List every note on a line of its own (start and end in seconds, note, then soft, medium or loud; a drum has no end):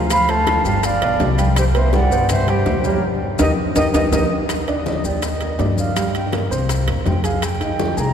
0.00 0.59 D2 medium
0.10 0.26 F3 medium
0.10 0.26 F4 medium
0.10 0.29 F5 medium
0.10 0.26 F5 medium
0.10 0.31 B5 loud
0.10 high bongo medium
0.10 high conga soft
0.10 high timbale medium
0.10 maracas medium
0.28 0.59 A3 medium
0.28 0.59 A4 medium
0.28 0.59 C5 medium
0.28 0.65 F5 medium
0.28 0.66 A5 loud
0.28 high bongo soft
0.28 high conga soft
0.28 high timbale medium
0.28 maracas soft
0.47 high bongo medium
0.47 high conga medium
0.47 high timbale medium
0.47 low timbale medium
0.47 maracas soft
0.65 0.99 G1 medium
0.65 0.95 G3 medium
0.65 0.95 G4 medium
0.65 0.85 F5 medium
0.65 0.95 G5 medium
0.65 0.86 A5 loud
0.65 high conga soft
0.65 maracas medium
0.83 1.38 D5 medium
0.83 1.39 F5 loud
0.83 high bongo medium
0.83 high conga soft
0.83 high timbale medium
0.83 maracas medium
1.01 1.18 B1 medium
1.01 1.32 B3 medium
1.01 1.32 B4 medium
1.01 1.32 D5 medium
1.01 high bongo soft
1.01 high conga soft
1.01 high timbale loud
1.01 maracas soft
1.20 2.05 C2 medium
1.20 high bongo soft
1.20 low bongo medium
1.20 high conga medium
1.20 low timbale medium
1.20 maracas soft
1.38 1.68 G3 medium
1.38 1.68 G4 medium
1.38 1.68 G5 medium
1.38 high bongo soft
1.38 high conga medium
1.38 high timbale medium
1.38 maracas medium
1.56 1.63 G4 medium
1.56 1.64 C5 loud
1.56 high bongo medium
1.56 high conga soft
1.56 high timbale loud
1.56 maracas medium
1.74 1.89 B3 medium
1.74 1.90 B4 medium
1.74 1.90 C5 medium
1.74 1.95 C5 medium
1.74 1.97 E5 medium
1.74 high bongo soft
1.74 high conga soft
1.74 high timbale medium
1.74 maracas soft
1.93 2.08 G3 medium
1.93 2.08 G4 medium
1.93 2.29 D5 medium
1.93 2.31 F#5 loud
1.93 2.08 G5 medium
1.93 high bongo medium
1.93 high conga loud
1.93 low timbale medium
1.93 maracas soft
2.11 2.62 G2 medium
2.11 2.41 B2 medium
2.11 2.42 B4 medium
2.11 2.42 C5 medium
2.11 maracas medium
2.29 2.50 C5 medium
2.29 2.51 E5 loud
2.29 high bongo medium
2.29 high conga soft
2.29 low conga medium
2.29 high timbale medium
2.29 maracas medium
2.47 2.78 G3 medium
2.47 2.78 G4 medium
2.47 2.87 G4 medium
2.47 2.87 C5 medium
2.47 2.78 G5 medium
2.47 high bongo soft
2.47 high conga soft
2.47 high timbale medium
2.47 maracas soft
2.66 3.00 D#2 medium
2.66 high bongo soft
2.66 low bongo medium
2.66 high conga medium
2.66 low timbale medium
2.66 maracas soft
2.84 3.00 G3 medium
2.84 3.00 G4 medium
2.84 3.03 A#4 medium
2.84 3.03 C#5 medium
2.84 3.00 G5 medium
2.84 high bongo soft
2.84 high conga medium
2.84 maracas medium
3.39 3.53 D#2 medium
3.39 3.51 D#4 medium
3.39 3.51 G4 loud
3.39 3.51 A#4 medium
3.39 3.51 D#5 medium
3.39 3.51 D#5 loud
3.39 low bongo loud
3.39 high conga loud
3.39 high timbale loud
3.39 maracas loud
3.75 3.89 D#2 medium
3.75 3.88 D#4 medium
3.75 3.88 G4 medium
3.75 3.88 A#4 medium
3.75 3.87 D#5 loud
3.75 3.88 D#5 medium
3.75 low bongo medium
3.75 high conga medium
3.75 high timbale medium
3.75 maracas loud
3.93 4.08 D#2 medium
3.93 4.06 D#4 medium
3.93 4.05 G4 medium
3.93 4.05 A#4 medium
3.93 4.06 D#5 medium
3.93 4.06 D#5 loud
3.93 low bongo medium
3.93 high conga medium
3.93 high timbale loud
3.93 maracas medium
4.12 4.26 D#2 medium
4.12 4.24 D#4 medium
4.12 4.24 G4 medium
4.12 4.24 A#4 medium
4.12 4.24 D#5 medium
4.12 4.24 D#5 loud
4.12 low bongo loud
4.12 high conga loud
4.12 high timbale loud
4.12 maracas loud
4.49 high bongo medium
4.49 high conga soft
4.49 high timbale medium
4.49 maracas medium
4.68 4.98 D4 medium
4.68 4.98 D5 medium
4.68 high bongo soft
4.68 high conga soft
4.68 high timbale medium
4.68 maracas soft
4.86 5.03 D#5 medium
4.86 high bongo medium
4.86 high conga medium
4.86 low timbale medium
4.86 maracas soft
5.04 5.55 D#2 medium
5.04 5.35 G4 medium
5.04 5.26 D5 medium
5.04 5.35 G5 medium
5.04 maracas medium
5.22 5.78 D#5 medium
5.22 high bongo medium
5.22 high conga soft
5.22 high timbale medium
5.22 maracas medium
5.41 5.56 A#3 medium
5.41 5.56 A#4 medium
5.41 high bongo soft
5.41 high conga soft
5.41 high timbale medium
5.41 maracas soft
5.59 6.45 G2 medium
5.59 5.89 D4 medium
5.59 5.89 D5 medium
5.59 high bongo soft
5.59 low bongo medium
5.59 high conga medium
5.59 low timbale medium
5.59 maracas soft
5.78 6.12 F5 medium
5.78 high bongo soft
5.78 high conga medium
5.78 maracas medium
5.96 6.26 G3 medium
5.96 6.26 G4 medium
5.96 high bongo medium
5.96 high conga soft
5.96 high timbale loud
5.96 maracas medium
6.14 6.32 G5 loud
6.14 high bongo soft
6.14 high conga soft
6.14 high timbale medium
6.14 maracas soft
6.32 6.48 A#3 medium
6.32 6.48 A#4 medium
6.32 high bongo medium
6.32 high conga medium
6.32 high timbale medium
6.32 low timbale medium
6.32 maracas soft
6.50 6.85 C2 medium
6.50 6.81 C4 medium
6.50 6.81 C5 medium
6.50 high conga soft
6.50 maracas medium
6.69 high bongo medium
6.69 high conga soft
6.69 high timbale medium
6.69 maracas medium
6.87 7.04 E2 medium
6.87 7.17 A#3 medium
6.87 7.18 A#4 medium
6.87 high bongo soft
6.87 high conga soft
6.87 high timbale loud
6.87 maracas soft
7.06 7.92 F2 medium
7.06 7.24 G5 medium
7.06 high bongo soft
7.06 low bongo medium
7.06 high conga medium
7.06 low timbale medium
7.06 maracas soft
7.24 7.54 G#4 medium
7.24 7.45 F5 medium
7.24 7.54 G#5 medium
7.24 high bongo soft
7.24 high timbale medium
7.24 maracas medium
7.42 7.98 G5 medium
7.42 high bongo medium
7.42 high conga soft
7.42 high timbale loud
7.42 maracas medium
7.60 7.91 D#4 medium
7.60 7.91 D#5 medium
7.60 high bongo soft
7.60 high conga soft
7.60 high timbale medium
7.60 maracas soft
7.79 high bongo medium
7.79 high conga loud
7.79 low timbale medium
7.79 maracas soft
7.97 8.13 C2 loud
7.97 8.13 G#4 medium
7.97 8.13 G#5 medium
7.97 8.13 A#5 loud
7.97 maracas medium